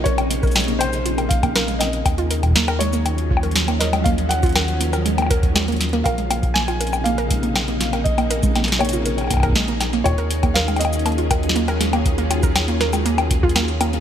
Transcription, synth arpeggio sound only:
X:1
M:4/4
L:1/16
Q:1/4=120
K:Ebdor
V:1 name="Synth arpeggio sound"
B z B, B A, B, z2 F B z B, B A, B, z | z F B z B, B A, B, z2 F B z B, B A, | B, z2 F B z B, B A, B, B z A, B, z B, | B A, B, z B, F B z B, B A, B, z B, F B |
z B, B A, B, z B, F B z B, B A, B, z B, | F B z B, B A, B, z B, F B z B, B A, B, | z B, F B z B, B A, B, z2 F B, z B, B, |]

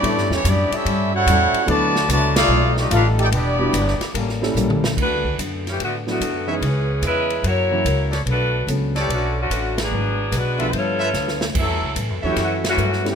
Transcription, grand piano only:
X:1
M:4/4
L:1/8
Q:"Swing" 1/4=146
K:D
V:1 name="Grand piano"
[G,B,CEA] z6 z | [F,B,DEA] z6 z | z [G,B,DEF] z3 [G,_B,CEA]3 | z4 z [F,A,B,DE] z [E,^G,B,C_E] |
z4 z [E,F,^A,CE] z2 | z2 [D,F,A,B,C] z4 z | z3 [D,=F,A,B,e]3 z2 | z3 [E,F,A,CE]3 z [G,A,B,CE] |]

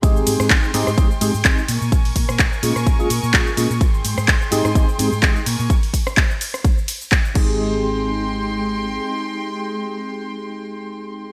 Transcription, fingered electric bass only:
X:1
M:4/4
L:1/16
Q:"Swing 16ths" 1/4=127
K:Ab
V:1 name="Fingered electric bass" clef=bass
A,,, z A,, A,, A,,, z A,, A,, A,,, z A,, A,, A,,, z B,, B,, | B,,, z B,, B,, B,,, z B,, B,, B,,, z B,, B,, B,,, z B,, B,, | A,,, z A,, A,, A,,, z A,, A,, A,,, z A,, A,, A,,, z B,, B,, | z12 z2 A,,,2- |
A,,,12 z4 | z16 |]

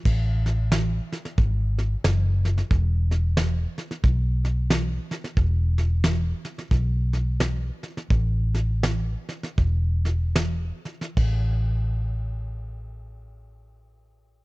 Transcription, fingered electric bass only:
X:1
M:4/4
L:1/8
Q:"Swing" 1/4=88
K:Emix
V:1 name="Fingered electric bass" clef=bass
A,,,4 G,,,2 F,,,2 | E,,,4 B,,,4 | E,,,4 B,,,4 | A,,,4 E,,,4 |
A,,,8 |]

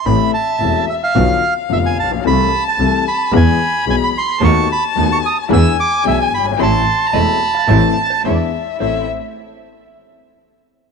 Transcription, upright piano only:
X:1
M:4/4
L:1/16
Q:1/4=110
K:Am
V:1 name="Upright piano" clef=bass
[A,,,A,,C,E,A,E]2 z2 [E,,,E,,C,E,A,E]2 z2 [B,,,B,,D,F,B,F]2 z2 [F,,,F,,D,F,B,F]2 z/2 A,,,/2 _B,,,/2 =B,,,/2 | [C,,C,E,A,CA]2 z2 [C,,C,E,A,CA]2 z2 [E,,E,^G,B,^G]2 z2 [B,,,B,,E,G,B,G]2 z2 | [^D,,^D,A,B,^F]2 z2 [D,,D,A,B,F]2 z2 [E,,E,B,=D^G]2 z2 [B,,,B,,E,B,DG]2 z/2 ^F,,,/2 =G,,,/2 ^G,,,/2 | [A,,,A,,E,A,CA]2 z2 [E,,,E,,E,A,CA]2 z2 [A,,,A,,E,A,CA]2 z2 [E,,E,B,D^G]2 z2 |
[A,,,CEA]2 z12 z2 |]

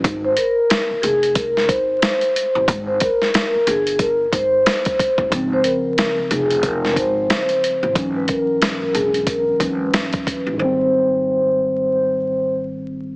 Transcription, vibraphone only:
X:1
M:4/4
L:1/16
Q:"Swing 16ths" 1/4=91
K:Ab
V:1 name="Vibraphone"
z c B2 B2 A2 B2 c6 | z c B2 B2 A2 B2 c6 | z c B2 B2 A2 B2 c6 | z =B _B2 B2 ^G2 B2 =B6 |
c12 z4 |]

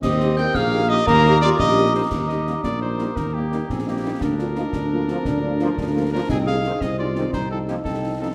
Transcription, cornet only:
X:1
M:6/8
L:1/8
Q:3/8=115
K:Eb
V:1 name="Cornet"
e2 g f2 e | B2 d e2 c | B e2 d c2 | B G2 A G2 |
B6- | B4- B B | A f2 e d2 | c =A G A2 A |]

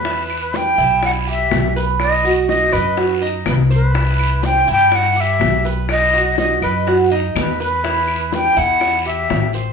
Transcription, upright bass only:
X:1
M:4/4
L:1/8
Q:1/4=123
K:Em
V:1 name="Upright bass" clef=bass
E,,3 B,,,3 B,,,2- | B,,,3 F,,3 C,,2- | C,,3 G,,3 B,,,2- | B,,,3 F,,3 E,,2- |
E,,3 E,,3 A,,,2 |]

